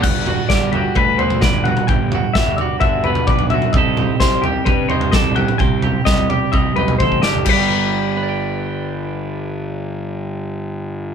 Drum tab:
CC |x---------------|----------------|----------------|----------------|
SD |----o-------o---|----o-----------|----o-------o---|----o---------o-|
T1 |----------------|----------------|----------------|------------o---|
T2 |--o---------o-oo|--o---------o-oo|--o---------o-oo|--o-------------|
FT |o-o---o-o-oo-oo-|o-o--oo-o-oo-oo-|o-o---o-o-oo-oo-|o-o--oo-o-oo---o|
BD |o---o---o---o---|o---o---o---o---|o---o---o---o---|o---o---o---oo--|

CC |x---------------|----------------|
SD |----------------|----------------|
T1 |----------------|----------------|
T2 |----------------|----------------|
FT |----------------|----------------|
BD |o---------------|----------------|